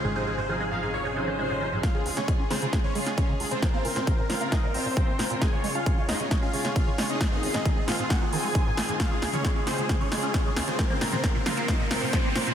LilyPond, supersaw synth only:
\new Staff \with { instrumentName = "Supersaw synth" } { \time 4/4 \key des \major \tempo 4 = 134 aes'16 c''16 aes'16 c''16 aes'16 aes'16 f''16 aes'16 des''16 aes'16 c''4~ c''16 r16 | <f' f''>16 aes'16 aes'16 <des' des''>16 aes'16 aes'16 <c' c''>16 aes'16 aes'16 <des' des''>16 aes'16 aes'16 <des' des''>16 aes'16 aes'16 <c' c''>16 | bes'16 <c' c''>16 bes'16 <c' c''>16 bes'16 bes'16 <f' f''>16 bes'16 <ees' ees''>16 bes'16 <c' c''>4~ <c' c''>16 r16 | <aes' aes''>16 des''16 des''16 <f' f''>16 des''16 des''16 <ees' ees''>16 des''16 des''16 <f' f''>16 des''16 des''16 <f' f''>16 des''16 des''16 <ees' ees''>16 |
aes'16 <ees' ees''>16 aes'16 <ees' ees''>16 aes'16 aes'16 <f' f''>16 aes'16 <ges' ges''>16 aes'16 <aes' aes''>4~ <aes' aes''>16 r16 | <f' f''>16 aes'16 aes'16 <des' des''>16 aes'16 aes'16 <c' c''>16 aes'16 aes'16 <des' des''>16 aes'16 aes'16 <des' des''>16 aes'16 aes'16 <c' c''>16 | bes'16 <c' c''>16 bes'16 <c' c''>16 bes'16 bes'16 <f' f''>16 bes'16 <ees' ees''>16 bes'16 <c' c''>4~ <c' c''>16 r16 | }